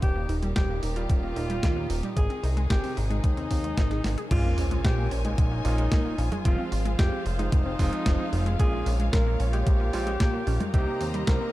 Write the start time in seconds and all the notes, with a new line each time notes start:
0.02 D#1 A#2 D#3 G3 D#4 G4, kick, closed hi-hat
0.16 A#3
0.29 D#1 D#4, open hi-hat
0.43 G3, closed hi-hat
0.56 D#1 G3 G4, kick, snare, closed hi-hat
0.69 A#3
0.83 D#1 D#4, open hi-hat
0.96 G3 F4, closed hi-hat
1.09 D#1 G3, kick, closed hi-hat
1.23 A#3
1.36 D#1 D#4, open hi-hat
1.50 G3, closed hi-hat
1.63 D#2 G3, kick, snare, closed hi-hat
1.76 A#3
1.90 D#1 D#4, open hi-hat
2.03 G3, closed hi-hat
2.17 G#1 C3 D#3 G#3 G#4, kick, closed hi-hat
2.30 C4, closed hi-hat
2.43 C2 D#4, open hi-hat
2.57 G#3, closed hi-hat
2.70 G#1 G#3 G4, kick, snare, closed hi-hat
2.84 C4, open hi-hat
2.97 G#1 D#4, open hi-hat
3.10 G#3 D#4, closed hi-hat
3.24 D#2 G#3, kick, closed hi-hat
3.37 C4, closed hi-hat
3.51 D#2 C4, kick, open hi-hat
3.64 G#3, closed hi-hat
3.77 G#1 D#4, kick, snare, closed hi-hat
3.91 G#4, snare, closed hi-hat
4.04 G#1 D#5, snare, open hi-hat
4.18 G#4, closed hi-hat
4.31 A#1 A#2 G#3 A#3 C#4 F4 A#4 C#5 G#5, kick, closed hi-hat, crash, sub drop
4.44 A#3
4.58 A#1 C#4, open hi-hat
4.71 G#3, closed hi-hat
4.84 A#1 G#3 G4, kick, snare, closed hi-hat
4.98 A#3
5.11 A#1 C#4, open hi-hat
5.25 G#3 D#4, closed hi-hat
5.38 A#1 G#3, kick, closed hi-hat
5.51 A#3
5.65 A#1 A#2 G#3 A#3 C#4 F4, open hi-hat
5.78 G#3, closed hi-hat
5.92 A#2 G#3, kick, snare, closed hi-hat
6.05 A#3
6.18 A#1 C#4, open hi-hat
6.32 G#3, closed hi-hat, high conga
6.45 F1 F3 G#3 C4 F4 G#4 C5 F5, kick, closed hi-hat
6.59 C4
6.72 G#1 F4, open hi-hat
6.85 G#3, closed hi-hat
6.99 F1 G#3 G4, kick, snare, closed hi-hat
7.12 C4
7.25 F1 F4, open hi-hat
7.39 G#3 D#4, closed hi-hat
7.52 F1 G#3, kick, closed hi-hat
7.66 C4
7.79 F1 F3 G#3 C4 F4, kick, open hi-hat
7.92 G#3, closed hi-hat
8.06 F1 G#3, kick, snare, closed hi-hat
8.19 C4
8.33 F1 F4, open hi-hat
8.46 G#3, closed hi-hat
8.59 A#1 A#2 G#3 A#3 C#4 F4 G#4 A#4 C#5, kick, closed hi-hat
8.73 A#3
8.86 A#1 C#4, open hi-hat
9.00 G#3, closed hi-hat
9.13 A#1 G#3 A#4, kick, snare, closed hi-hat
9.26 A#3
9.40 A#1 C#4, open hi-hat
9.53 G#3 G4, closed hi-hat
9.67 A#1 G#3, kick, closed hi-hat
9.80 A#3
9.93 A#1 A#2 G#3 A#3 C#4 F4, open hi-hat
10.07 G#3, closed hi-hat
10.20 A#2 G#3, kick, snare, closed hi-hat
10.33 A#3
10.47 A#1 C#4, open hi-hat
10.60 G#3, closed hi-hat, high conga
10.74 C2 C3 G3 A#3 C4 D#4 G4 C5 D#5 A#5, kick, closed hi-hat
10.87 A#3
11.00 D#2 C4, open hi-hat
11.14 G3, closed hi-hat
11.27 C2 G3 A#4, kick, snare, closed hi-hat
11.41 A#3